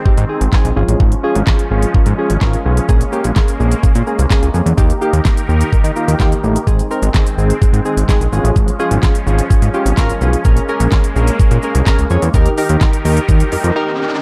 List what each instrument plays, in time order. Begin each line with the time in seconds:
Already playing: supersaw synth D#3 G#3 C4
0.05 analog synth bass G#2, synth keys C4 D#4 G4, kick
0.18 analog synth bass G#2, closed hi-hat
0.29 synth keys C4 D#4 G#4
0.41 analog synth bass G#1, closed hi-hat
0.53 synth keys C4 D#4 G#4, kick, snare, clap
0.65 analog synth bass A#1, closed hi-hat
0.76 analog synth bass G#1, supersaw synth F3 C#4, synth keys C#4 F4 G#4
0.88 analog synth bass A1, closed hi-hat
1.00 analog synth bass G#1, kick
1.12 closed hi-hat
1.23 synth keys C#4 F4 G#4
1.35 analog synth bass G#1, closed hi-hat
1.47 synth keys C#4 F4 G#4, kick, snare, clap
1.59 closed hi-hat
1.71 analog synth bass G#1, synth keys C#4 F4 G#4
1.82 closed hi-hat
1.94 analog synth bass G#2, synth keys C#4 F4 A#4, kick
2.06 analog synth bass G#2, closed hi-hat
2.18 synth keys C#4 F4 G#4
2.30 analog synth bass G#1, closed hi-hat
2.41 analog synth bass G#1, synth keys C#4 F4 A#4 F5, kick, snare, clap
2.53 closed hi-hat
2.65 analog synth bass B1, synth keys C#4 F4 G#4
2.77 closed hi-hat
2.89 analog synth bass A#1, synth keys A#3 C#4 G#4, supersaw synth A#3, kick, shaker
3.01 closed hi-hat, shaker
3.12 synth keys A#3 C#4 G4, shaker
3.24 analog synth bass A#1, closed hi-hat, shaker
3.36 synth keys A#3 C#4 G#4, kick, snare, clap, shaker
3.48 closed hi-hat, shaker
3.59 analog synth bass A#1, synth keys A#3 C#4 G#4, shaker
3.72 closed hi-hat, shaker
3.83 analog synth bass A#2, synth keys A#3 C#4 G#4, kick, shaker
3.95 analog synth bass A#2, closed hi-hat, shaker
4.07 synth keys A#3 C#4 G#4, shaker
4.19 analog synth bass C2, closed hi-hat, shaker
4.30 synth keys A#3 C#4 G#4, kick, snare, clap, shaker
4.42 analog synth bass C#2, closed hi-hat, shaker
4.54 analog synth bass F2, synth keys A#3 C#4 G#4, shaker
4.66 analog synth bass E2, closed hi-hat, shaker
4.77 analog synth bass D#2, supersaw synth D#3 D#4 G4 A#4, synth keys A#3 D#4 G4, kick, shaker
4.90 closed hi-hat, shaker
5.01 synth keys A#3 D#4 G4, shaker
5.13 analog synth bass D#2, closed hi-hat, shaker
5.25 synth keys A#3 D#4 G4, kick, snare, clap, shaker
5.37 closed hi-hat, shaker
5.48 analog synth bass D#2, synth keys A#3 D#4 G4, shaker
5.61 closed hi-hat, shaker
5.72 analog synth bass D#3, synth keys A#3 D#4 A#4, kick, shaker
5.84 analog synth bass D#3, closed hi-hat, shaker
5.96 synth keys A#3 D#4 F4 A#5, shaker
6.08 analog synth bass D#2, closed hi-hat, shaker
6.20 analog synth bass D#2, synth keys A#3 D#4 G4 G5, kick, snare, clap, shaker
6.32 closed hi-hat, shaker
6.43 analog synth bass A1, synth keys A#3 D#4 G4, shaker
6.56 closed hi-hat, shaker
6.67 analog synth bass G#1, supersaw synth G#3 C4, synth keys C4 D#4 G#4, kick, shaker
6.79 closed hi-hat, shaker
6.91 synth keys C4 D#4 A#4, shaker
7.02 analog synth bass G#1, closed hi-hat, shaker
7.14 synth keys C4 D#4 G#4, kick, snare, clap, shaker
7.27 closed hi-hat, shaker
7.38 analog synth bass G#1, synth keys C4 D#4 G#4, shaker
7.50 closed hi-hat, shaker
7.61 analog synth bass G#2, synth keys C4 D#4 G#4, kick, shaker
7.73 analog synth bass G#2, closed hi-hat, shaker
7.85 synth keys C4 D#4 G#4, shaker
7.97 analog synth bass G#1, closed hi-hat, shaker
8.08 synth keys C4 D#4 G#4, kick, snare, clap, shaker
8.20 analog synth bass A#1, closed hi-hat, shaker
8.32 analog synth bass G#1, supersaw synth F3 C#4, synth keys C#4 F4 G#4, shaker
8.44 analog synth bass A1, closed hi-hat, shaker
8.56 analog synth bass G#1, kick, shaker
8.68 closed hi-hat, shaker
8.79 synth keys C#4 F4 G#4, shaker
8.91 analog synth bass G#1, closed hi-hat, shaker
9.03 synth keys C#4 F4 G#4, kick, snare, clap, shaker
9.15 closed hi-hat, shaker
9.26 analog synth bass G#1, synth keys C#4 F4 G#4, shaker
9.39 closed hi-hat, shaker
9.50 analog synth bass G#2, synth keys C#4 F4 G#4, kick, shaker
9.62 analog synth bass G#2, closed hi-hat, shaker
9.74 synth keys C#4 F4 G4, shaker
9.86 analog synth bass G#1, closed hi-hat, shaker
9.97 analog synth bass G#1, synth keys C#4 F4 A#4, kick, snare, clap, shaker
10.10 closed hi-hat, shaker
10.21 analog synth bass B1, synth keys C#4 F4 G#4, shaker
10.33 closed hi-hat, shaker
10.45 analog synth bass A#1, supersaw synth G#3 A#3, synth keys C#4 G#4 A#4, kick, shaker
10.57 closed hi-hat, shaker
10.69 synth keys C#4 G#4 A#4, shaker
10.80 analog synth bass A#1, closed hi-hat, shaker
10.92 synth keys C#4 G#4 A#4, kick, snare, clap, shaker
11.04 closed hi-hat, shaker
11.16 analog synth bass A#1, synth keys C#4 G#4 A#4, shaker
11.27 closed hi-hat, shaker
11.39 analog synth bass A#2, synth keys C#4 G#4 A#4, kick, shaker
11.51 analog synth bass A#2, closed hi-hat, shaker
11.63 synth keys C#4 G#4 A#4, shaker
11.75 analog synth bass C2, closed hi-hat, shaker
11.86 synth keys C#4 G#4 A#4, kick, snare, clap, shaker
11.99 analog synth bass C#2, closed hi-hat, shaker
12.10 analog synth bass F2, synth keys C#4 G#4 C#5, shaker
12.22 analog synth bass E2, closed hi-hat, shaker
12.34 analog synth bass D#2, supersaw synth D#3 D#4 G4 A#4, synth keys D#4 G4 A#4, kick, riser, shaker
12.46 closed hi-hat, shaker
12.58 synth keys D#4 G4 A#4, open hi-hat, shaker
12.69 analog synth bass D#2, closed hi-hat, shaker
12.81 synth keys D#4 G4 A#4, kick, snare, clap, shaker
12.93 closed hi-hat, shaker
13.05 analog synth bass D#2, synth keys D#4 G4 A#4, open hi-hat, shaker
13.17 closed hi-hat, shaker
13.29 analog synth bass D#2, synth keys D#4 G4 A#4, kick, shaker
13.40 closed hi-hat, shaker
13.52 analog synth bass F2, synth keys D#4 G4 A#4, open hi-hat, shaker
13.64 analog synth bass F2, closed hi-hat, shaker
13.76 synth keys D#4 G4 A#4
13.99 synth keys D#4 G4 A#4